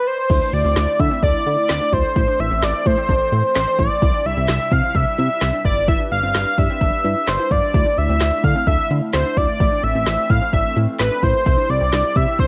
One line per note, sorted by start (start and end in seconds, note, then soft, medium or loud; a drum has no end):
0.07 0.55 C5 medium
0.30 0.41 D2 loud
0.30 2.14 D3 medium
0.30 3.98 A3 medium
0.30 0.40 E4 loud
0.30 2.14 E4 medium
0.30 kick loud
0.30 closed hi-hat medium
0.30 crash loud
0.42 0.62 D4 medium
0.53 0.64 D2 loud
0.53 1.01 D5 loud
0.53 closed hi-hat medium
0.65 0.75 D2 loud
0.65 0.75 C4 medium
0.76 0.87 D2 loud
0.76 0.97 D4 medium
0.76 snare loud
0.76 clap loud
0.76 closed hi-hat medium
1.00 1.10 D3 loud
1.00 1.10 E4 medium
1.00 1.23 E5 medium
1.00 kick medium
1.00 closed hi-hat medium
1.11 1.21 C4 medium
1.23 1.33 D2 loud
1.23 1.43 D4 medium
1.23 1.45 D5 loud
1.23 kick medium
1.23 closed hi-hat medium
1.46 1.57 D3 loud
1.46 1.66 E4 medium
1.46 1.94 D5 loud
1.46 closed hi-hat medium
1.69 1.80 D2 loud
1.69 1.80 C4 medium
1.69 snare loud
1.69 clap loud
1.69 closed hi-hat medium
1.81 1.91 D4 medium
1.93 2.03 D2 loud
1.93 2.13 E4 medium
1.93 2.41 C5 loud
1.93 kick medium
1.93 open hi-hat medium
2.16 2.27 A1 loud
2.16 4.00 E3 medium
2.16 4.00 C4 medium
2.16 2.26 E4 loud
2.16 kick loud
2.16 closed hi-hat medium
2.28 2.48 D4 medium
2.39 2.50 A1 loud
2.39 2.65 E5 loud
2.39 closed hi-hat medium
2.51 2.62 A1 loud
2.51 2.61 C4 medium
2.62 2.73 A1 loud
2.62 2.83 D4 medium
2.62 2.88 D5 loud
2.62 snare loud
2.62 clap loud
2.62 closed hi-hat medium
2.86 2.96 A2 loud
2.86 2.96 E4 medium
2.86 3.56 C5 loud
2.86 kick medium
2.86 closed hi-hat medium
2.98 3.08 C4 medium
3.09 3.19 A1 loud
3.09 3.29 D4 medium
3.09 kick medium
3.09 closed hi-hat medium
3.32 3.43 A2 loud
3.32 3.52 E4 medium
3.32 closed hi-hat medium
3.55 3.66 A1 loud
3.55 3.66 C4 medium
3.55 3.78 C5 loud
3.55 snare loud
3.55 clap medium
3.55 closed hi-hat medium
3.67 3.77 D4 medium
3.79 3.89 A1 loud
3.79 3.99 E4 medium
3.79 4.27 D5 loud
3.79 kick medium
3.79 open hi-hat medium
4.02 4.13 C2 loud
4.02 5.63 C3 medium
4.02 7.71 G3 medium
4.02 4.12 E4 loud
4.02 5.63 E4 medium
4.02 kick loud
4.02 closed hi-hat medium
4.14 4.34 D4 medium
4.25 4.36 C2 loud
4.25 4.74 E5 loud
4.25 closed hi-hat medium
4.37 4.48 C2 loud
4.37 4.47 C4 medium
4.48 4.59 C2 loud
4.48 4.69 D4 medium
4.48 snare loud
4.48 clap loud
4.48 closed hi-hat medium
4.71 4.82 C3 loud
4.71 4.82 E4 medium
4.71 4.97 F5 loud
4.71 kick medium
4.71 closed hi-hat medium
4.84 4.94 C4 medium
4.95 5.06 C2 loud
4.95 5.15 D4 medium
4.95 5.18 E5 loud
4.95 kick medium
4.95 closed hi-hat medium
5.18 5.29 C3 loud
5.18 5.38 E4 medium
5.18 5.62 E5 loud
5.18 closed hi-hat medium
5.41 5.52 C2 loud
5.41 5.52 C4 medium
5.41 snare loud
5.41 clap medium
5.41 closed hi-hat medium
5.53 5.63 D4 medium
5.65 5.96 G1 loud
5.65 7.72 D4 medium
5.65 5.85 E4 medium
5.65 7.72 B4 medium
5.65 5.87 D5 loud
5.65 kick medium
5.65 open hi-hat medium
5.88 5.98 E4 loud
5.88 5.99 E5 loud
5.88 kick loud
5.88 closed hi-hat medium
6.00 6.20 D4 medium
6.11 6.22 G1 loud
6.11 6.60 F5 loud
6.11 closed hi-hat medium
6.23 6.34 G1 medium
6.23 6.33 C4 medium
6.35 6.45 G1 loud
6.35 6.55 D4 medium
6.35 snare loud
6.35 clap medium
6.35 closed hi-hat medium
6.58 6.68 G2 loud
6.58 6.68 E4 medium
6.58 7.30 E5 loud
6.58 kick medium
6.58 open hi-hat medium
6.70 6.80 C4 medium
6.81 6.92 G1 loud
6.81 7.01 D4 medium
6.81 kick medium
6.81 closed hi-hat medium
7.04 7.15 G2 loud
7.04 7.24 E4 medium
7.04 closed hi-hat medium
7.28 7.38 G1 loud
7.28 7.38 D4 medium
7.28 7.53 C5 medium
7.28 snare loud
7.28 clap medium
7.28 closed hi-hat medium
7.39 7.49 E4 medium
7.51 7.61 G1 loud
7.51 7.71 F4 medium
7.51 7.99 D5 loud
7.51 kick medium
7.51 open hi-hat medium
7.74 7.85 D2 loud
7.74 9.58 D3 medium
7.74 9.58 A3 medium
7.74 7.84 E4 medium
7.74 9.58 E4 medium
7.74 kick loud
7.74 closed hi-hat medium
7.86 8.06 D4 medium
7.97 8.08 D2 loud
7.97 8.46 E5 loud
7.97 closed hi-hat medium
8.09 8.20 D2 loud
8.09 8.19 C4 medium
8.21 8.31 D2 loud
8.21 8.41 D4 medium
8.21 snare loud
8.21 clap loud
8.21 closed hi-hat medium
8.44 8.54 D3 loud
8.44 8.54 E4 medium
8.44 8.67 F5 loud
8.44 kick medium
8.44 closed hi-hat medium
8.56 8.66 C4 medium
8.67 8.78 D2 loud
8.67 8.87 D4 medium
8.67 8.89 E5 loud
8.67 kick medium
8.67 closed hi-hat medium
8.90 9.01 D3 loud
8.90 9.11 E4 medium
8.90 closed hi-hat medium
9.13 9.24 D2 loud
9.13 9.24 C4 medium
9.13 9.39 C5 medium
9.13 snare loud
9.13 clap medium
9.13 closed hi-hat medium
9.25 9.35 D4 medium
9.37 9.47 D2 loud
9.37 9.57 E4 medium
9.37 9.85 D5 loud
9.37 kick medium
9.37 open hi-hat medium
9.60 9.71 A1 loud
9.60 11.44 E3 medium
9.60 11.44 A3 medium
9.60 11.44 C4 medium
9.60 9.70 E4 loud
9.60 kick loud
9.60 closed hi-hat medium
9.72 9.92 D4 medium
9.83 9.94 A1 loud
9.83 10.32 E5 loud
9.83 closed hi-hat medium
9.95 10.06 A1 loud
9.95 10.05 C4 medium
10.06 10.17 A1 loud
10.06 10.27 D4 medium
10.06 snare loud
10.06 clap loud
10.06 closed hi-hat medium
10.30 10.40 A2 medium
10.30 10.40 E4 medium
10.30 10.53 F5 loud
10.30 kick medium
10.30 closed hi-hat medium
10.42 10.52 C4 medium
10.53 10.64 A1 loud
10.53 10.73 D4 medium
10.53 10.75 E5 loud
10.53 kick medium
10.53 closed hi-hat medium
10.76 10.87 A2 loud
10.76 10.97 E4 medium
10.76 closed hi-hat medium
10.99 11.10 A1 loud
10.99 11.10 C4 medium
10.99 11.25 B4 medium
10.99 snare loud
10.99 clap loud
10.99 closed hi-hat medium
11.11 11.21 D4 medium
11.23 11.34 A1 loud
11.23 11.43 E4 medium
11.23 11.71 C5 loud
11.23 kick medium
11.23 open hi-hat medium
11.46 11.57 C2 loud
11.46 12.47 C3 medium
11.46 12.47 G3 medium
11.46 12.47 E4 medium
11.46 11.56 E4 loud
11.46 kick loud
11.46 closed hi-hat medium
11.58 11.78 D4 medium
11.69 11.80 C2 loud
11.69 12.18 D5 loud
11.69 closed hi-hat medium
11.81 11.92 C2 loud
11.81 11.91 C4 medium
11.93 12.03 C2 loud
11.93 12.13 D4 medium
11.93 snare loud
11.93 clap loud
11.93 closed hi-hat medium
12.16 12.26 C3 loud
12.16 12.26 E4 medium
12.16 12.39 E5 loud
12.16 kick medium
12.16 closed hi-hat medium
12.27 12.38 C4 medium
12.39 12.47 C2 loud
12.39 12.47 D4 medium
12.39 12.47 C5 loud
12.39 kick medium
12.39 closed hi-hat medium